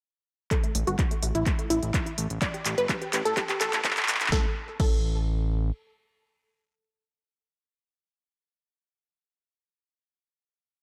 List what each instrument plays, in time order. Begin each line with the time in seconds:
0.51 synth pluck A4, kick, clap, closed hi-hat
0.64 synth pluck A3, closed hi-hat
0.75 analog synth bass A1, synth pluck A3, open hi-hat
0.87 analog synth bass G1, synth pluck F#4, closed hi-hat
0.99 synth pluck A3, kick, clap, closed hi-hat
1.11 synth pluck A3, closed hi-hat
1.23 analog synth bass A1, synth pluck A3, open hi-hat
1.35 analog synth bass A1, synth pluck E4, closed hi-hat
1.46 synth pluck A3, kick, clap, closed hi-hat
1.59 synth pluck A3, closed hi-hat
1.70 analog synth bass A1, synth pluck E4, open hi-hat
1.83 analog synth bass A1, closed hi-hat
1.94 kick, clap, closed hi-hat
2.06 closed hi-hat
2.18 analog synth bass A1, open hi-hat
2.30 analog synth bass A1, closed hi-hat
2.42 synth pluck D5, kick, clap, closed hi-hat
2.54 synth pluck G4, closed hi-hat
2.65 analog synth bass A1, synth pluck G4, clap, open hi-hat
2.78 analog synth bass G1, synth pluck B4, closed hi-hat
2.89 synth pluck G4, kick, clap, closed hi-hat
3.02 synth pluck G4, closed hi-hat
3.13 analog synth bass A1, synth pluck G4, clap, open hi-hat
3.25 analog synth bass A1, synth pluck A4, closed hi-hat
3.37 synth pluck G4, kick, clap, closed hi-hat
3.49 synth pluck G4, clap, closed hi-hat
3.61 analog synth bass A1, synth pluck A4, clap, open hi-hat
3.73 analog synth bass A1, clap, closed hi-hat
3.85 kick, clap, closed hi-hat
3.91 clap
3.97 clap, closed hi-hat
4.03 clap
4.08 analog synth bass A1, clap, open hi-hat
4.15 clap
4.21 analog synth bass A1, clap, closed hi-hat
4.26 clap
4.32 analog synth bass A1, synth pluck A4, kick, snare
4.80 analog synth bass A1, synth pluck A4, kick, crash